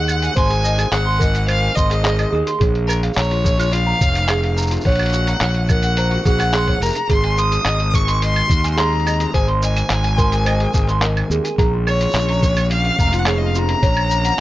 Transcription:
Already playing: D#2 G#4 D#5 F#5
0.08 claves, shaker
0.22 G#5, closed hi-hat, shaker
0.36 G#1 C5 G#5 C6, kick, closed hi-hat, shaker
0.50 G#4, closed hi-hat
0.64 D#5, shaker
0.78 G#4, closed hi-hat, claves, shaker
0.92 G#1 G#4 F#5, clap, closed hi-hat, shaker
1.06 C6
1.19 A#4 D#5, kick, shaker
1.35 closed hi-hat, shaker
1.48 C5 F5, closed hi-hat, claves, shaker
1.62 G#5
1.75 G#1 D#5 C6, kick, shaker
1.91 G#4, clap, closed hi-hat, shaker
2.03 G#4 D#5, clap, shaker
2.19 G#4, closed hi-hat, claves
2.31 D#2 G#4
2.47 C6, closed hi-hat, shaker
2.60 A#1 G#4 C#5, kick, closed hi-hat, shaker
2.75 closed hi-hat
2.87 A#4, claves, shaker
3.03 F5, closed hi-hat, shaker
3.13 A#1 C#5 A#5, shaker
3.18 clap, closed hi-hat, shaker
3.22 shaker
3.31 F4, closed hi-hat
3.44 C#5, kick, shaker
3.58 F4, closed hi-hat, claves, shaker
3.72 F4 F5, closed hi-hat, shaker
3.86 A#5
4.01 F1 C#5, kick, shaker
4.15 closed hi-hat, shaker
4.29 G#4, clap, closed hi-hat, claves, shaker
4.43 F5, closed hi-hat
4.56 A#5, shaker
4.62 shaker
4.67 F4, shaker
4.71 closed hi-hat, shaker
4.76 shaker
4.81 shaker
4.85 A#1 C#5 F#5, kick, closed hi-hat, shaker
4.89 closed hi-hat
4.92 closed hi-hat
4.95 F#4, closed hi-hat
4.99 closed hi-hat, claves
5.03 closed hi-hat
5.06 closed hi-hat
5.10 F#4, closed hi-hat, shaker
5.27 A#5, closed hi-hat, shaker
5.41 A#1 C#5, clap, closed hi-hat, shaker
5.55 closed hi-hat
5.69 A#4 F#5, kick, claves, shaker
5.83 F#5, closed hi-hat, shaker
5.97 C5 A#5, closed hi-hat, shaker
6.11 F#4, closed hi-hat
6.25 A#1 F#4 G#4 F#5, kick, shaker
6.40 F#5, clap, closed hi-hat, claves, shaker
6.53 G#4 C6, clap, closed hi-hat, shaker
6.67 C#5, kick, closed hi-hat
6.80 F1 A#4 A#5, shaker
6.85 shaker
6.89 shaker
6.92 closed hi-hat, shaker
6.95 A#5, shaker
7.09 G#1 D#3 G#3 C4 G#4 C6, kick, closed hi-hat, shaker
7.24 G#5, closed hi-hat
7.38 C6 D#6, shaker
7.51 G#4, closed hi-hat, shaker
7.65 G#1 D#5, clap, closed hi-hat, claves, shaker
7.80 G#4, closed hi-hat
7.94 G#4 C#6, kick, shaker
8.07 C6, closed hi-hat, shaker
8.22 D#5 C6, closed hi-hat, shaker
8.36 closed hi-hat, claves
8.49 D#2, kick, shaker
8.64 G#5, closed hi-hat, shaker
8.72 C6
8.77 G#4 A#5 C6, clap, closed hi-hat, shaker
8.93 G#4, closed hi-hat
9.00 closed hi-hat
9.06 D#5, closed hi-hat, claves, shaker
9.14 closed hi-hat
9.20 G#4, closed hi-hat, shaker
9.33 G#1 G#4 C5 G#5, kick, closed hi-hat, shaker
9.48 C6, closed hi-hat
9.61 D#5 G#5, shaker
9.77 closed hi-hat, claves, shaker
9.90 G#1, clap, closed hi-hat, shaker
10.04 G#5, closed hi-hat
10.18 A#4 C6, kick, shaker
10.32 G#4, closed hi-hat, shaker
10.45 C5 D#5, closed hi-hat, claves, shaker
10.60 G#4, closed hi-hat
10.74 G#1 G#4, kick, shaker
10.88 C6, clap, shaker
11.01 A#4 D#5, clap, closed hi-hat, shaker
11.17 closed hi-hat, claves
11.30 D#2 G#4, shaker
11.44 G#5, closed hi-hat, shaker
11.57 A#1 F3 A#3 C#4 G#4 A#5, kick, closed hi-hat, shaker
11.73 F4
11.87 C#5, claves
12.01 F4, closed hi-hat, shaker
12.11 A#1 F4, shaker
12.15 clap, closed hi-hat, shaker
12.20 shaker
12.29 A#5, closed hi-hat
12.43 C#5, kick, shaker
12.57 closed hi-hat, claves, shaker
12.71 F5, closed hi-hat, shaker
12.85 F5, closed hi-hat
12.98 F1 A#5, kick, shaker
13.13 F4, closed hi-hat, shaker
13.19 F#5
13.26 G#4 C#5 F5, clap, closed hi-hat, claves, shaker
13.38 F4 D#5
13.46 F5
13.55 F4 A#5, shaker
13.69 A#5, closed hi-hat
13.82 A#1 F#3 A#3 C#5, kick, closed hi-hat, shaker
13.97 closed hi-hat, claves
14.11 shaker
14.25 F#5, closed hi-hat, shaker

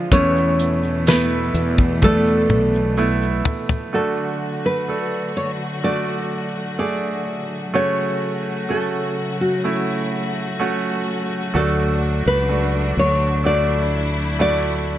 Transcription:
Already playing: F3 D4 F4 F5
0.12 E2 B2 E3 A3 B3 C#4 E4 C#5, kick, closed hi-hat, shaker
0.36 shaker
0.59 closed hi-hat, shaker
0.83 shaker
1.07 A3 B3 E4 B4, snare, closed hi-hat, shaker
1.30 shaker
1.54 E2, closed hi-hat
1.78 kick, shaker
2.02 A3 B3 D4 A4, kick, high tom, shaker
2.26 shaker
2.49 B1, mid tom
2.74 shaker
2.97 A3 B3 E4, shaker
3.21 shaker
3.45 floor tom, shaker
3.69 floor tom, shaker
3.92 D3 F#3 A3 D4 F#4 A4
4.66 B4
4.88 A3 D4 A4
5.37 C#5
5.84 A3 D4 F#4 D5
6.79 A3 D4 G#4 D5
7.73 C#3 A3 C#4 F#4 C#5
8.69 A3 C#4 F#4 A4
9.41 F#4
9.64 A3 C#4 E4
10.59 A3 C#4 F#4
11.54 D2 F#3 A3 D4 F#4 A4
12.26 C#2 B4
12.49 A3 D4 F#4
12.97 D2 C#5
13.44 A3 D4 E4 F#4 D5
14.39 A3 D4 F#4 D5

